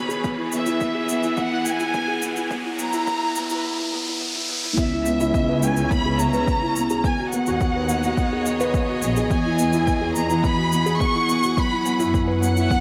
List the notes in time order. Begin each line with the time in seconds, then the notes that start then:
Already playing: D#3 B3 F#4 G#4 B4 C#5 B5, riser
0.09 G#4, shaker
0.23 E3 B3, kick, shaker
0.37 E4
0.52 B3 E5, shaker
0.66 E4 F#5, shaker
0.81 B3, kick, shaker
0.95 G#4
1.09 B3, shaker
1.23 E4, shaker
1.36 B3 F#5, kick, shaker
1.51 E4
1.65 B3 G#5, shaker
1.80 E4, shaker
1.94 B3, kick, shaker
2.08 G#4
2.22 B3, shaker
2.36 E4, shaker
2.50 F#3 B3, kick, shaker
2.65 E4
2.79 B3 A#5, shaker
2.83 E4
2.93 E4, shaker
3.07 B3, kick, shaker
3.22 E4
3.35 B3, shaker
3.50 E4, shaker
3.54 B4
3.64 B3
3.78 E4
3.93 B3
4.06 E4
4.21 B3
4.35 E4
4.49 B3
4.64 E4
4.77 C#2 C#3 B3 E5, kick, shaker
4.93 E4
5.06 B3, shaker
5.20 E4, shaker
5.28 C#4
5.34 B3, kick, shaker
5.49 B4
5.62 B3 G#5, shaker
5.77 E4 E5, shaker
5.91 B3 B5, kick, shaker
6.06 G#4
6.19 B3 A#5, shaker
6.33 B4, shaker
6.47 B3, kick, shaker
6.62 E4
6.76 B3, shaker
6.90 G#4, shaker
7.04 D#3 B3 G#5, kick, shaker
7.19 F#4
7.32 B3 F#5, shaker
7.42 G#4
7.46 D#2 F#4 C#5 D#5, shaker
7.60 B3, kick, shaker
7.76 B4
7.89 B3, shaker
8.03 F#4, shaker
8.17 B3, kick, shaker
8.33 G#4
8.46 B3, shaker
8.60 B4, shaker
8.74 B3, kick, shaker
8.89 F#4
9.02 A#1 B3, shaker
9.16 G#4, shaker
9.30 E2 E3 B3 G#5, kick, shaker
9.45 E4
9.58 B3, shaker
9.73 E4, shaker
9.87 B3, kick, shaker
10.01 G#4
10.15 B3 A#5, shaker
10.29 E4 F#5, shaker
10.44 B3 B5, kick, shaker
10.57 F#4
10.72 B3, shaker
10.86 G#4, shaker
11.00 B3 C#6, kick, shaker
11.14 E4
11.29 B3, shaker
11.43 F#4, shaker
11.57 F#3 B3 B5, kick, shaker
11.71 E4
11.85 B3, shaker
11.90 C#4
11.99 F#2 E4, shaker
12.14 B3, kick, shaker
12.28 B4
12.42 B3 F#5, shaker
12.56 E4 B4 E5, shaker
12.70 B3, kick, shaker